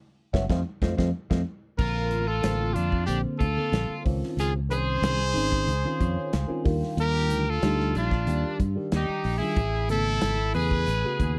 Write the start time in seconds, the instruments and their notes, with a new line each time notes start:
0.33 fingered electric bass F#1, tine electric piano F#3 B3 C#4 C#5 E5 F#5, kick, snare
0.49 fingered electric bass F2, tine electric piano F3 A3 C4 C5 D#5 F5, kick, snare
0.82 fingered electric bass F2, tine electric piano F3 A3 C4 C5 D#5 F5, kick, snare
0.97 fingered electric bass F2, tine electric piano F3 A3 C4 C5 D#5 F5, kick, snare
1.30 fingered electric bass F2, tine electric piano F3 A3 C4 C5 D#5 F5, kick, snare
1.77 fingered electric bass A#1, tine electric piano D3 A#3 C4 A#4, overdriven electric guitar F4, trumpet A#4, kick, crash
2.11 fingered electric bass A1, closed hi-hat
2.27 overdriven electric guitar F4, trumpet A4
2.42 fingered electric bass A1, tine electric piano D3 A#3 C4 F4, snare, closed hi-hat
2.74 fingered electric bass F2, overdriven electric guitar D4, trumpet F4, closed hi-hat
2.92 kick
3.06 fingered electric bass A#1, tine electric piano D3 A#3 C4 C5, overdriven electric guitar D4, trumpet G4, closed hi-hat
3.39 fingered electric bass D2, overdriven electric guitar F4, trumpet A4, kick, closed hi-hat
3.57 tine electric piano D3 A#3 C4 A4
3.72 fingered electric bass A#1, snare, closed hi-hat
4.05 fingered electric bass C#2, tine electric piano D#3 C4 C#4 F4, kick, open hi-hat
4.23 snare
4.37 fingered electric bass C#2, trumpet G#4, closed hi-hat
4.41 overdriven electric guitar F4
4.69 fingered electric bass C2, tine electric piano D#3 C4 C#4 G#4, overdriven electric guitar G#4, trumpet C5, closed hi-hat
5.02 fingered electric bass C2, snare, closed hi-hat
5.21 snare
5.34 fingered electric bass G#1, tine electric piano D#3 C4 C#4 D#4, open hi-hat
5.52 kick, snare
5.67 fingered electric bass C#2, closed hi-hat
5.84 tine electric piano D#3 C4 C#4 F4
6.00 fingered electric bass F2, tine electric piano C#5, kick, closed hi-hat
6.33 fingered electric bass C#2, tine electric piano F5, snare, closed hi-hat
6.48 tine electric piano D#3 C4 C#4 F4 G#5
6.64 fingered electric bass D#2, tine electric piano D#3 G3 D4 F4 G5, kick, open hi-hat
6.83 snare
6.97 fingered electric bass D#2, trumpet A#4, closed hi-hat
7.02 overdriven electric guitar G4
7.29 fingered electric bass D2, closed hi-hat
7.50 overdriven electric guitar F4, trumpet A4
7.62 fingered electric bass D2, tine electric piano G3 D4 D#4 G4, snare, closed hi-hat
7.80 snare
7.95 fingered electric bass A#1, overdriven electric guitar D4, trumpet F4, closed hi-hat
8.11 kick, snare
8.26 fingered electric bass D#2, tine electric piano D#3 G3 D4 G4, closed hi-hat
8.60 fingered electric bass G2, kick, closed hi-hat
8.75 tine electric piano D#3 G3 D4 G4
8.92 fingered electric bass D#2, snare, closed hi-hat
8.96 overdriven electric guitar D#4, trumpet G4
9.09 muted fingered electric bass stroke
9.24 fingered electric bass A#1, open hi-hat
9.38 tine electric piano D#3 G3 D4 F4, overdriven electric guitar E4, trumpet G#4
9.56 fingered electric bass A1, kick, closed hi-hat
9.88 fingered electric bass G#1, tine electric piano C#3 A3 B3 A4, overdriven electric guitar E4, trumpet A4, snare, closed hi-hat
10.21 fingered electric bass G#1, snare, closed hi-hat
10.54 fingered electric bass E2, tine electric piano C#3 A3 B3 G#4, overdriven electric guitar G#4, trumpet B4, open hi-hat
10.71 kick
10.87 fingered electric bass A1, closed hi-hat
11.04 tine electric piano C#3 A3 B3 F#4
11.20 fingered electric bass D#2, kick, closed hi-hat